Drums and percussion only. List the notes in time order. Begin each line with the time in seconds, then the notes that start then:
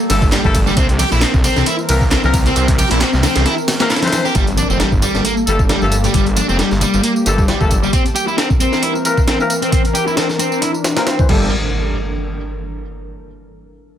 0.10 snare, closed hi-hat, ride, tambourine
0.22 kick, tambourine
0.32 snare, clap, closed hi-hat, tambourine
0.44 kick, tambourine, high conga
0.55 kick, closed hi-hat, ride, tambourine, high conga
0.67 tambourine
0.77 kick, closed hi-hat, tambourine
0.89 closed hi-hat, tambourine
0.99 closed hi-hat, ride, tambourine, high conga
1.12 tambourine
1.22 snare, clap, closed hi-hat, tambourine
1.34 kick, tambourine
1.44 closed hi-hat, ride, tambourine
1.56 snare, tambourine
1.66 closed hi-hat, tambourine
1.79 tambourine
1.89 closed hi-hat, ride, tambourine
2.01 kick, tambourine
2.11 snare, clap, closed hi-hat, tambourine
2.24 tambourine, high conga
2.34 kick, closed hi-hat, ride, tambourine, high conga
2.46 closed hi-hat, tambourine, low conga
2.56 closed hi-hat, tambourine
2.68 kick, closed hi-hat, tambourine
2.78 closed hi-hat, ride, tambourine, high conga
2.91 closed hi-hat, tambourine
3.01 snare, clap, closed hi-hat, tambourine
3.13 snare, tambourine
3.23 snare, closed hi-hat, ride, tambourine, low conga
3.36 snare, closed hi-hat, tambourine
3.46 snare, closed hi-hat, tambourine
3.58 tambourine
3.68 snare, closed hi-hat, ride, tambourine
3.80 snare, closed hi-hat, tambourine
3.90 snare, clap, closed hi-hat, tambourine
3.96 snare, closed hi-hat
4.02 snare, closed hi-hat, tambourine, high conga
4.07 snare, closed hi-hat
4.12 snare, closed hi-hat, ride, tambourine, high conga
4.25 snare, tambourine
4.35 kick, closed hi-hat, tambourine
4.47 closed hi-hat, tambourine
4.57 closed hi-hat, tambourine, high conga
4.70 tambourine
4.80 snare, closed hi-hat, tambourine
4.92 kick, tambourine
5.02 closed hi-hat, tambourine
5.15 snare, tambourine
5.25 closed hi-hat, tambourine
5.37 tambourine
5.47 closed hi-hat, tambourine
5.59 kick, tambourine
5.69 snare, closed hi-hat, tambourine
5.82 tambourine, high conga
5.91 closed hi-hat, tambourine, high conga
6.04 closed hi-hat, tambourine, low conga
6.14 kick, closed hi-hat, tambourine
6.26 closed hi-hat, tambourine
6.37 closed hi-hat, tambourine, high conga
6.49 tambourine
6.59 snare, closed hi-hat, tambourine
6.71 snare, tambourine
6.80 closed hi-hat, tambourine, low conga
6.94 tambourine
7.04 closed hi-hat, tambourine
7.16 tambourine
7.26 snare, closed hi-hat, tambourine
7.38 kick, tambourine
7.48 snare, closed hi-hat, tambourine
7.61 kick, tambourine, high conga
7.70 kick, closed hi-hat, tambourine, high conga
7.83 tambourine
7.93 kick, closed hi-hat, tambourine
8.06 closed hi-hat, tambourine
8.16 closed hi-hat, tambourine
8.28 tambourine
8.38 snare, closed hi-hat, tambourine
8.50 kick, tambourine
8.60 closed hi-hat, tambourine
8.73 snare, tambourine
8.83 closed hi-hat, tambourine
8.95 tambourine
9.05 closed hi-hat, tambourine
9.17 kick, tambourine
9.28 snare, closed hi-hat, tambourine
9.40 tambourine
9.50 closed hi-hat, tambourine
9.62 closed hi-hat, tambourine
9.72 kick, closed hi-hat, tambourine
9.85 closed hi-hat, tambourine
9.95 closed hi-hat, tambourine
10.08 tambourine
10.17 snare, closed hi-hat, tambourine
10.29 snare, tambourine
10.39 closed hi-hat, tambourine
10.52 tambourine
10.62 closed hi-hat, tambourine
10.74 tambourine
10.84 snare, closed hi-hat, tambourine
10.97 snare, closed hi-hat, tambourine
11.07 snare, closed hi-hat, tambourine
11.19 kick, tambourine
11.29 kick, crash